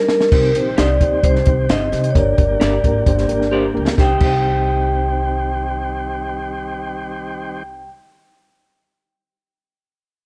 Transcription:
Already playing: clean electric guitar G3 D#4
0.08 vibraphone A#4, snare
0.21 snare
0.32 upright bass C2, tonewheel organ D#3 G3 C4 G4, reed electric piano C4 D#4 G4 C5, kick, crash
0.55 upright bass A#1, reed electric piano C4 D#4 G4 C5, vibraphone C5, closed hi-hat
0.77 upright bass C2, reed electric piano C4 D#4 G4 C5, clean electric guitar G4 C5 D#5, vibraphone D5, snare, closed hi-hat
1.01 upright bass D#2, reed electric piano C4 D#4 G4 C5, kick, closed hi-hat
1.23 upright bass C2, reed electric piano C4 D#4 G4 C5, vibraphone C5, kick, closed hi-hat
1.36 snare
1.46 upright bass C2, reed electric piano C4 D#4 G4 C5, kick, closed hi-hat
1.69 upright bass G1, reed electric piano C4 D#4 G4 C5, clean electric guitar G4 C5 D#5, vibraphone D#5, snare, closed hi-hat
1.91 upright bass C3, reed electric piano C4 G4 C5, snare, closed hi-hat
2.04 closed hi-hat
2.11 reed electric piano A#3, vibraphone C#5
2.15 upright bass G1, tonewheel organ D3 A#3, reed electric piano D4 G4 A#4, vibraphone D5, kick, closed hi-hat
2.37 upright bass G1, reed electric piano A#3 D4 G4 A#4, kick, closed hi-hat
2.59 upright bass G1, reed electric piano A#3 D4 G4 A#4, clean electric guitar G4 A#4 D5, snare, closed hi-hat
2.83 upright bass G#1, reed electric piano A#3 D4 G4 A#4, kick, closed hi-hat
3.06 upright bass G1, reed electric piano A#3 D4 G4 C5, kick, closed hi-hat
3.18 snare, closed hi-hat
3.28 upright bass G1, reed electric piano A#3 D4 G4 A#4, closed hi-hat
3.42 snare
3.51 reed electric piano A#3 D4 G4 C5, clean electric guitar G4 A#4 D5
3.74 upright bass C#2, reed electric piano A#3 D4 G4 A#4
3.88 snare
3.95 upright bass C2, reed electric piano C4 D#4, tonewheel organ C4, clean electric guitar G4, kick, snare
3.99 tonewheel organ D#3 G3 G4, reed electric piano G4 C5, clean electric guitar C5 D#5, vibraphone G5
4.18 upright bass C2, reed electric piano C4 D#4 G4, clean electric guitar G4, kick, crash
4.23 clean electric guitar C5 D#5, reed electric piano C5, vibraphone G5

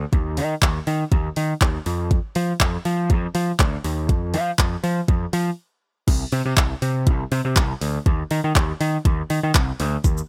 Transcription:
0.13 picked electric bass D#2, kick, closed hi-hat
0.37 picked electric bass D#3, open hi-hat
0.62 picked electric bass D#2, kick, clap, closed hi-hat
0.87 picked electric bass D#3, open hi-hat
1.12 picked electric bass D#2, kick, closed hi-hat
1.36 picked electric bass D#3, open hi-hat
1.61 picked electric bass D#2, kick, clap, closed hi-hat
1.86 picked electric bass F2, open hi-hat
2.11 kick, closed hi-hat
2.35 picked electric bass F3, open hi-hat
2.60 picked electric bass F2, kick, clap, closed hi-hat
2.85 picked electric bass F3, open hi-hat
3.10 picked electric bass F2, kick, closed hi-hat
3.35 picked electric bass F3, open hi-hat
3.59 picked electric bass D2, kick, clap, closed hi-hat
3.84 picked electric bass D#2, open hi-hat
4.09 picked electric bass F2, kick, closed hi-hat
4.34 picked electric bass F3, open hi-hat
4.59 picked electric bass F2, kick, clap, closed hi-hat
4.83 picked electric bass F3, open hi-hat
5.08 picked electric bass F2, kick, closed hi-hat
5.33 picked electric bass F3, open hi-hat
6.08 picked electric bass C2, kick, closed hi-hat, crash
6.32 picked electric bass C3, open hi-hat
6.45 picked electric bass C3
6.57 picked electric bass C2, kick, clap, closed hi-hat
6.82 picked electric bass C3, open hi-hat
7.07 picked electric bass C2, kick, closed hi-hat
7.32 picked electric bass C3, open hi-hat
7.45 picked electric bass C3
7.56 picked electric bass C2, kick, clap, closed hi-hat
7.81 picked electric bass D2, open hi-hat
8.06 picked electric bass D#2, kick, closed hi-hat
8.31 picked electric bass D#3, open hi-hat
8.44 picked electric bass D#3
8.55 picked electric bass D#2, kick, clap, closed hi-hat
8.81 picked electric bass D#3, open hi-hat
9.05 picked electric bass D#2, kick, closed hi-hat
9.30 picked electric bass D#3, open hi-hat
9.43 picked electric bass D#3
9.55 picked electric bass C2, kick, clap, closed hi-hat
9.80 picked electric bass D2, open hi-hat
10.04 picked electric bass D#2, kick, closed hi-hat, shaker
10.18 shaker

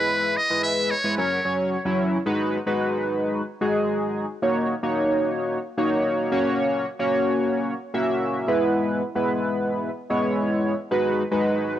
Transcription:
Already playing: analog polysynth G#3 E4 B4, muted trumpet B4
0.37 muted trumpet D#5
0.50 analog polysynth G#3 E4 B4
0.64 muted trumpet E5
0.91 muted trumpet C#5
1.04 analog polysynth G#3 E4 B4
1.18 analog polysynth F#3 C#4 A#4, muted trumpet C#5
1.45 analog polysynth F#3 C#4 C#5
1.85 analog polysynth F#3 C#4 E4
2.26 analog polysynth G#3 D#4 F#4 B4
2.66 analog polysynth G#3 D#4 F#4 B4
3.61 analog polysynth G#3 D#4 F#4 G#4
4.42 analog polysynth A#3 D#4 F#4 C#5
4.83 analog polysynth A#3 D#4 F#4 C#5
5.77 analog polysynth A#3 D#4 F#4 C#5
6.31 analog polysynth A#3 C#4 F#4 C#5
6.99 analog polysynth A#3 C#4 F#4 C#5
7.94 analog polysynth A#3 C#4 F#4 E5
8.48 analog polysynth G#3 B3 E4 B4
9.15 analog polysynth G#3 B3 E4 B4
10.10 analog polysynth G#3 B3 E4 C#5
10.91 analog polysynth G#3 D#4 F#4 B4
11.31 analog polysynth G#3 D#4 F#4 B4

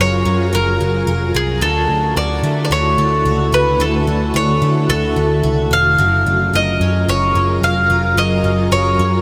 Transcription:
Already playing: twelve-string acoustic guitar F#2 C#4 F4, ambient pad F#3 F4 G#4 A#4
0.00 picked electric bass F#1, twelve-string acoustic guitar A#4, mandolin C#5
0.25 picked electric bass F#2, twelve-string acoustic guitar C#4
0.53 picked electric bass F#1, twelve-string acoustic guitar A#4, mandolin A#4
0.80 picked electric bass F#1, twelve-string acoustic guitar C#4
1.06 picked electric bass F1, twelve-string acoustic guitar A#4
1.34 picked electric bass C2, twelve-string acoustic guitar F4, mandolin G#4
1.61 picked electric bass D2, twelve-string acoustic guitar D3 F#4, ambient pad D3 A3 E4 F#4, mandolin A4
1.89 picked electric bass D2
2.16 picked electric bass D2, twelve-string acoustic guitar F#4, mandolin D5
2.43 picked electric bass D3, twelve-string acoustic guitar A3
2.65 mandolin D5
2.70 picked electric bass D2, twelve-string acoustic guitar F#4, mandolin C#5
2.98 picked electric bass D2, twelve-string acoustic guitar A3
3.25 picked electric bass C#2, twelve-string acoustic guitar F#4
3.52 picked electric bass C#2, twelve-string acoustic guitar C#4, mandolin B4
3.80 picked electric bass D2, twelve-string acoustic guitar D3 F#4, mandolin A4
4.07 picked electric bass D2, twelve-string acoustic guitar C#4
4.34 picked electric bass D2, twelve-string acoustic guitar F#4, mandolin C#5
4.62 picked electric bass D3, twelve-string acoustic guitar A3
4.89 picked electric bass D2, twelve-string acoustic guitar F#4, mandolin A4
5.16 picked electric bass D2, twelve-string acoustic guitar A3
5.43 picked electric bass C#2, twelve-string acoustic guitar F#4
5.71 picked electric bass E1, twelve-string acoustic guitar C#4, mandolin F5
5.98 picked electric bass F#1, twelve-string acoustic guitar F#2 A#4, ambient pad F#3 F4 G#4 A#4
6.26 picked electric bass F#1, twelve-string acoustic guitar F4
6.54 picked electric bass F#1, twelve-string acoustic guitar A#4, mandolin D#5
6.80 picked electric bass F#2, twelve-string acoustic guitar C#4
7.08 picked electric bass F#1, twelve-string acoustic guitar A#4, mandolin C#5
7.35 picked electric bass F#1, twelve-string acoustic guitar C#4
7.62 picked electric bass F1, twelve-string acoustic guitar A#4, mandolin F5
7.89 picked electric bass F1, twelve-string acoustic guitar F4
8.16 picked electric bass F#1, twelve-string acoustic guitar F#2 A#4, mandolin D#5
8.44 picked electric bass F#1, twelve-string acoustic guitar F4
8.72 picked electric bass F#1, twelve-string acoustic guitar A#4, mandolin C#5
8.99 picked electric bass F#2, twelve-string acoustic guitar C#4

